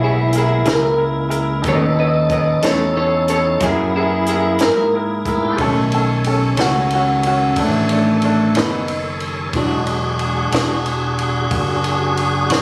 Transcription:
Already playing: B1 G#3 A#3 E4
0.00 E4 G#4 C#5
0.04 E4
0.33 E4 G#4 A#4, closed hi-hat
0.38 E4 G#4
0.64 C#2 F#3 A#3 E4 G#4 A#4, snare, closed hi-hat
0.71 A#4
0.97 E4 G#4 A#4
1.29 E4 G#4 A#4, closed hi-hat
1.62 D#2 B2 A3 C#4 D#4 A4 C#5, kick, closed hi-hat
1.68 B4 D#5
1.95 D#4 A4 C#5
1.99 B4 D#5
2.29 D#4 A4 B4 C#5 D#5, kick, closed hi-hat
2.62 E2 B2 A3 C#4 D#4 A4 C#5, snare, closed hi-hat
2.96 D#4 A4 C#5
3.28 D#4 A4 C#5, closed hi-hat
3.60 F#2 F#3 A#3 E4 G#4, kick, snare, closed hi-hat
3.65 G#4 A#4
3.94 E4 G#4 A#4
4.26 E4 G#4 A#4, closed hi-hat
4.59 G#2 E4 G#4 A#4, snare, closed hi-hat
4.63 F#3 A#3
4.94 E4 G#4 A#4
5.25 A3 B3 E4 G#4 A#4, kick, closed hi-hat
5.31 C4 D4
5.37 E4 F4
5.43 G4 A4
5.48 B4 C5
5.53 D#3 G#4 C#5 D5
5.57 B1 B2 D#3 A3 C#4 A4, kick, ride
5.61 A4
5.92 C#4 A4, ride
6.24 C#4 A4, ride
6.57 C#2 B2 D#3 A3 C#4 F#4, snare, ride
6.90 C#4, ride
6.95 F#4
7.23 C#4 F#4, ride
7.56 A1 A3 D4, kick, ride
7.89 A3 D4, ride
8.22 A3 D4, ride
8.54 F#1 B2 D#3 A3 C#4 D#4, snare, ride
8.58 B3
8.88 ride
9.20 ride
9.52 E1 E3 F#3 G#3 D4 F#4 G#4, kick, ride
9.56 G#3 D4 F#4
9.87 ride
10.19 ride
10.52 E1 E3 G#3 D4 F#4, snare, ride
10.86 ride
11.19 ride
11.51 F#1, kick, ride
11.84 ride
12.17 ride
12.50 A1 E3 G#3 D4 F#4, snare, ride

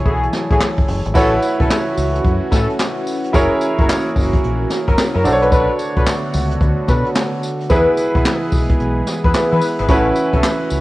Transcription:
Already playing: E3 F#3 A3 E4 G#4 A4 C#5 G#5
0.05 B1 A3 E4 F#4 G#4, kick, closed hi-hat
0.23 closed hi-hat
0.33 snare, closed hi-hat
0.50 A1 A3 E4 F#4 G#4, kick, closed hi-hat
0.60 snare, clap
0.78 F#1, kick, closed hi-hat
0.88 F#1, open hi-hat
1.05 G#1, closed hi-hat
1.14 A1 E3 A3 C#4 E4 F#4 A4 B4 C#5, kick, crash, tambourine
1.42 closed hi-hat, tambourine
1.60 B1 C#4 E4 F#4 A4, kick, closed hi-hat
1.70 snare, clap, closed hi-hat, tambourine
1.98 C#2, open hi-hat, tambourine
2.15 closed hi-hat
2.25 F#2, kick, closed hi-hat
2.52 A2 C#4 E4 F#4 A4, kick, snare, closed hi-hat, tambourine
2.70 closed hi-hat
2.79 snare, clap, closed hi-hat, tambourine
3.07 open hi-hat, tambourine
3.24 closed hi-hat
3.33 F#1 A#3 C#4 E4 F#4 G#4 A#4 C#5, kick, closed hi-hat, tambourine
3.61 closed hi-hat, tambourine
3.78 F#1 C#4 E4 F#4 A#4, kick, closed hi-hat
3.89 snare, clap, closed hi-hat, tambourine
4.16 F#1, kick, open hi-hat, tambourine
4.33 kick, closed hi-hat
4.44 A#1, closed hi-hat
4.70 snare, closed hi-hat, tambourine
4.87 F#1 C#4 E4 F#4 A#4, kick, closed hi-hat
4.98 snare, clap, closed hi-hat, tambourine
5.15 F#2 C#4 E4 F#4 A#4
5.24 B1 D3 A3 B3 D4 F#4 A4 C5, open hi-hat, tambourine
5.33 C#5
5.42 D4 F#4 A4 B4, closed hi-hat
5.51 D4 F#4 A4 B4, kick, closed hi-hat, tambourine
5.79 closed hi-hat, tambourine
5.96 B1 D4 F#4 A4 B4, kick, closed hi-hat
6.06 snare, clap, closed hi-hat, tambourine
6.34 C#2, open hi-hat, tambourine
6.51 closed hi-hat
6.61 D2, kick, closed hi-hat
6.88 B2 D4 F#4 A4 B4, kick, snare, closed hi-hat, tambourine
7.06 closed hi-hat
7.15 snare, clap, closed hi-hat, tambourine
7.43 open hi-hat, tambourine
7.61 closed hi-hat
7.70 E2 E3 G#3 B3 E4 G#4 B4, kick, closed hi-hat, tambourine
7.97 closed hi-hat, tambourine
8.15 B1 B3 E4 G#4 B4, kick, closed hi-hat
8.25 snare, clap, tambourine
8.52 B1, kick, open hi-hat, tambourine
8.70 kick, closed hi-hat
8.80 B1, closed hi-hat
9.07 snare, closed hi-hat, tambourine
9.24 E2 B3 E4 G#4 B4, kick, closed hi-hat
9.34 B3 E4 G#4 B4, snare, clap, closed hi-hat, tambourine
9.52 E3 B3 E4 G#4 B4
9.61 open hi-hat, tambourine
9.79 G#1 B3 E4 G#4 B4, closed hi-hat
9.88 A1 A3 C#4 E4 F#4 A4 B4, kick, closed hi-hat, tambourine
10.15 closed hi-hat, tambourine
10.33 B1 C#4 E4 F#4 A4, kick, closed hi-hat
10.43 snare, clap, closed hi-hat, tambourine
10.70 C#2, open hi-hat, tambourine

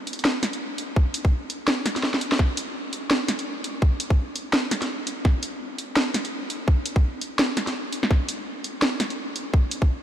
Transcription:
0.07 closed hi-hat
0.13 closed hi-hat
0.19 closed hi-hat
0.25 snare
0.43 snare, closed hi-hat
0.53 closed hi-hat
0.78 closed hi-hat
0.96 kick
1.14 closed hi-hat
1.25 kick
1.50 closed hi-hat
1.68 snare
1.86 snare, closed hi-hat
1.96 snare, closed hi-hat
2.03 snare
2.14 snare
2.21 closed hi-hat
2.32 snare
2.39 kick, snare
2.57 closed hi-hat
2.93 closed hi-hat
3.11 snare
3.28 snare, closed hi-hat
3.39 closed hi-hat
3.64 closed hi-hat
3.82 kick
4.00 closed hi-hat
4.10 kick
4.36 closed hi-hat
4.53 snare
4.71 snare, closed hi-hat
4.82 snare, closed hi-hat
5.07 closed hi-hat
5.25 kick, snare
5.43 closed hi-hat
5.79 closed hi-hat
5.97 snare
6.14 snare, closed hi-hat
6.25 closed hi-hat
6.50 closed hi-hat
6.68 kick
6.86 closed hi-hat
6.96 kick
7.21 closed hi-hat
7.39 snare
7.57 snare, closed hi-hat
7.67 snare, closed hi-hat
7.93 closed hi-hat
8.03 snare
8.11 kick, snare
8.29 closed hi-hat
8.64 closed hi-hat
8.82 snare
9.00 snare, closed hi-hat
9.10 closed hi-hat
9.36 closed hi-hat
9.54 kick
9.71 closed hi-hat
9.82 kick

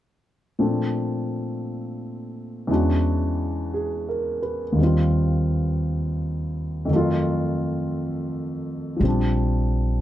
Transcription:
0.59 A#2 F3 A3 C4 D4
2.67 E2 E3 G#3 C#4 D4
2.72 F#4
3.74 G#4
4.09 A#4
4.42 B4
4.72 D#2 D#3
4.78 G3 C4
4.84 F4
6.85 F2 D#3
6.90 F#3 A3
6.96 F4
8.97 A#1 F3 G3
9.04 C4 D4

